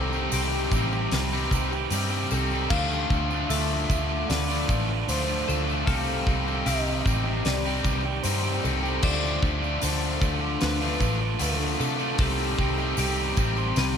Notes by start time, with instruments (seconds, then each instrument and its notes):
Already playing: picked electric bass C2, overdriven electric guitar C3 D#3 G3 C4 D#4 G4, clean electric guitar A4, soft synth lead C5
0.12 overdriven electric guitar G3 C4 D#4 G4, tambourine
0.32 picked electric bass C2, overdriven electric guitar C3 D#3 G3 C4 D#4 G4, clean electric guitar G4, open hi-hat, tambourine
0.52 tambourine
0.71 picked electric bass A1, overdriven electric guitar C3 D#3 G3 C4 D#4 G4, kick, tambourine
0.92 overdriven electric guitar G3 C4 G4, muted overdriven electric guitar stroke, tambourine
1.11 picked electric bass C2, clean electric guitar B4, snare, open hi-hat, tambourine
1.32 overdriven electric guitar G3 C4 D#4 G4, tambourine
1.51 picked electric bass C2, overdriven electric guitar D#3 G3 C4 G4, kick, tambourine
1.72 overdriven electric guitar G3 C4 G4, muted overdriven electric guitar stroke, tambourine
1.90 picked electric bass G2, overdriven electric guitar C3 D#3 G3 C4 D#4 G4, open hi-hat, tambourine
2.11 overdriven electric guitar G3 C4 G4, tambourine
2.31 picked electric bass C2, overdriven electric guitar C3 G3 C4 D#4, clean electric guitar A4, tambourine
2.51 overdriven electric guitar G3 C4 D#4 G4, tambourine
2.70 picked electric bass D2, overdriven electric guitar D3 F3 A3 D4 F4, clean electric guitar C5, soft synth lead F5, kick, crash, tambourine
2.91 tambourine
3.10 picked electric bass D2, overdriven electric guitar D3 F3 A3 D4 F4, kick, tambourine
3.30 overdriven electric guitar F3 A3 D4 F4, tambourine
3.49 picked electric bass D2, overdriven electric guitar D3 F3 A3 D4 F4, clean electric guitar A4, soft synth lead E5, open hi-hat, tambourine
3.70 tambourine
3.88 picked electric bass D2, overdriven electric guitar D3 F3 A3 D4 F4, kick, tambourine
4.08 overdriven electric guitar A3 D4 F4, muted overdriven electric guitar stroke
4.29 picked electric bass D2, clean electric guitar B4, soft synth lead D5, snare, open hi-hat, tambourine
4.47 overdriven electric guitar A3 D4 F4, tambourine
4.52 overdriven electric guitar F3
4.67 picked electric bass A1, overdriven electric guitar D3 A3 D4 F4, kick, tambourine
4.87 overdriven electric guitar A3 D4 F4, muted overdriven electric guitar stroke
5.07 picked electric bass D2, overdriven electric guitar D3 F3 A3 D4 F4, soft synth lead C5, open hi-hat, tambourine
5.28 overdriven electric guitar A3 D4 F4, tambourine
5.48 picked electric bass D2, overdriven electric guitar D3 F3 A3 D4, clean electric guitar A4, tambourine
5.67 overdriven electric guitar A3 D4 F4, tambourine
5.71 overdriven electric guitar F3
5.86 picked electric bass C2, overdriven electric guitar C3 D#3 G3 C4 G4, clean electric guitar A4, soft synth lead F5, kick, open hi-hat, tambourine
5.90 overdriven electric guitar D#4
6.09 tambourine
6.27 picked electric bass C2, overdriven electric guitar C3 D#3 G3 C4 D#4 G4, kick, tambourine
6.46 overdriven electric guitar G3 C4 D#4 G4, tambourine
6.65 picked electric bass C2, overdriven electric guitar C3 D#3 G3 C4 D#4 G4, clean electric guitar G4, soft synth lead D#5, open hi-hat, tambourine
6.88 tambourine
7.05 picked electric bass A1, overdriven electric guitar C3 D#3 G3 C4 D#4 G4, kick, tambourine
7.24 overdriven electric guitar G3 C4 G4, muted overdriven electric guitar stroke
7.45 picked electric bass C2, clean electric guitar B4, soft synth lead D5, snare, open hi-hat, tambourine
7.65 overdriven electric guitar G3 C4 D#4 G4, tambourine
7.83 picked electric bass C2, overdriven electric guitar D#3 G3 C4 G4, kick, tambourine
8.05 overdriven electric guitar G3 C4 G4, muted overdriven electric guitar stroke
8.23 picked electric bass G2, overdriven electric guitar C3 D#3 G3 C4 G4, soft synth lead C5, open hi-hat, tambourine
8.27 overdriven electric guitar D#4
8.43 overdriven electric guitar G3 C4 G4, tambourine
8.64 picked electric bass C2, overdriven electric guitar C3 G3 C4 D#4, clean electric guitar A4, tambourine
8.83 overdriven electric guitar G3 C4 D#4 G4, tambourine
9.02 picked electric bass D2, overdriven electric guitar D3 F3 A3 D4 F4, clean electric guitar C5, soft synth lead D5, kick, crash, tambourine
9.25 tambourine
9.42 picked electric bass D2, overdriven electric guitar D3 F3 A3 D4 F4, kick, tambourine
9.61 overdriven electric guitar F3 A3 D4 F4, tambourine
9.82 picked electric bass D2, overdriven electric guitar D3 F3 A3 D4 F4, clean electric guitar A4, soft synth lead C5, open hi-hat, tambourine
10.02 tambourine
10.21 picked electric bass D2, overdriven electric guitar D3 F3 A3 D4 F4, kick, tambourine
10.41 overdriven electric guitar A3 D4 F4, muted overdriven electric guitar stroke
10.61 picked electric bass D2, clean electric guitar B4, soft synth lead B4, snare, open hi-hat, tambourine
10.81 overdriven electric guitar F3 A3 D4 F4, tambourine
11.00 picked electric bass A1, overdriven electric guitar D3 A3 D4 F4, kick, tambourine
11.20 overdriven electric guitar A3 D4 F4, muted overdriven electric guitar stroke
11.39 picked electric bass D2, overdriven electric guitar D3 F3 A3 D4 F4, soft synth lead A4, open hi-hat, tambourine
11.59 overdriven electric guitar A3 D4 F4, tambourine
11.79 picked electric bass C3, overdriven electric guitar D3 F3 A3 D4, clean electric guitar A4, tambourine
11.99 overdriven electric guitar F3 A3 D4 F4, tambourine
12.18 picked electric bass C2, overdriven electric guitar C3 D#3 G3 C4 D#4 G4, soft synth lead G4, clean electric guitar A4, kick, open hi-hat, tambourine
12.40 tambourine
12.58 picked electric bass C2, overdriven electric guitar C3 D#3 G3 C4 D#4 G4, kick, tambourine
12.78 overdriven electric guitar G3 C4 D#4 G4, tambourine
12.97 picked electric bass C2, overdriven electric guitar C3 D#3 G3 C4 D#4 G4, clean electric guitar G4, open hi-hat, tambourine
13.17 tambourine
13.37 picked electric bass A1, overdriven electric guitar C3 D#3 G3 C4 D#4 G4, kick, tambourine
13.56 overdriven electric guitar G3 C4 G4, muted overdriven electric guitar stroke, tambourine
13.76 picked electric bass C2, clean electric guitar B4, snare, open hi-hat, tambourine